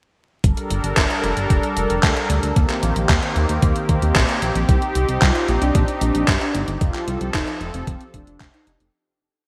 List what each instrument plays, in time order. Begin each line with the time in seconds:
0.44 analog synth bass G1, analog synth pad G3 D4 A4 A#4, kick, closed hi-hat
0.57 closed hi-hat
0.70 analog synth bass G1, closed hi-hat
0.84 analog synth bass G1, closed hi-hat
0.97 analog synth bass G1, kick, clap, closed hi-hat
1.10 closed hi-hat
1.24 analog synth bass F1, closed hi-hat
1.37 analog synth bass G1, closed hi-hat
1.50 analog synth bass F1, kick, closed hi-hat
1.63 closed hi-hat
1.77 analog synth bass F1, closed hi-hat
1.90 analog synth bass F1, closed hi-hat
2.03 analog synth bass D2, kick, clap, closed hi-hat
2.17 closed hi-hat
2.30 analog synth bass D2, closed hi-hat
2.43 analog synth bass D2, closed hi-hat
2.56 analog synth bass D#2, analog synth pad D#3 A#3 C4 G4, kick, closed hi-hat
2.70 clap, closed hi-hat
2.83 analog synth bass A#1, closed hi-hat
2.96 analog synth bass A#1, closed hi-hat
3.09 analog synth bass D#2, kick, clap, closed hi-hat
3.23 closed hi-hat
3.36 analog synth bass D#2, closed hi-hat
3.49 analog synth bass D#2, closed hi-hat
3.62 analog synth bass D#2, kick, closed hi-hat
3.76 closed hi-hat
3.89 analog synth bass D#2, kick, closed hi-hat
4.02 analog synth bass D#2, closed hi-hat
4.16 analog synth bass A#1, kick, clap, closed hi-hat
4.29 closed hi-hat
4.42 analog synth bass A#1, closed hi-hat
4.55 analog synth bass A#1, closed hi-hat
4.69 analog synth bass C2, analog synth pad D#4, analog polysynth G4, kick, closed hi-hat
4.82 closed hi-hat
4.95 analog synth bass C2, closed hi-hat
5.09 analog synth bass C2, closed hi-hat
5.22 analog synth bass C2, analog polysynth F4, kick, clap, closed hi-hat
5.35 closed hi-hat
5.48 analog synth bass A#1, closed hi-hat
5.62 analog synth bass C2, analog polysynth D4, closed hi-hat
5.75 analog synth bass A#1, kick, closed hi-hat
5.88 closed hi-hat
6.01 analog synth bass A#1, analog polysynth D4, closed hi-hat
6.15 analog synth bass A#1, closed hi-hat
6.28 analog synth bass G1, kick, clap, closed hi-hat
6.41 analog polysynth D4, closed hi-hat
6.55 analog synth bass G1, closed hi-hat
6.68 analog synth bass G1, closed hi-hat
6.81 analog synth bass F1, analog synth pad F3 A4, analog polysynth F4, kick, closed hi-hat
6.94 clap, closed hi-hat
7.08 analog synth bass C2, closed hi-hat
7.21 analog synth bass C2, closed hi-hat
7.34 analog synth bass F1, analog polysynth D#4, kick, clap, closed hi-hat
7.48 closed hi-hat
7.61 analog synth bass F1, closed hi-hat
7.74 analog synth bass F1, analog polysynth C4, closed hi-hat
7.87 analog synth bass F1, kick, closed hi-hat
8.01 closed hi-hat
8.14 analog synth bass F1, analog polysynth D4, kick, closed hi-hat
8.27 analog synth bass F1, closed hi-hat
8.40 analog synth bass F1, kick, clap, closed hi-hat
8.54 analog polysynth D#4, closed hi-hat
8.67 analog synth bass F1, closed hi-hat
8.80 analog synth bass F1, closed hi-hat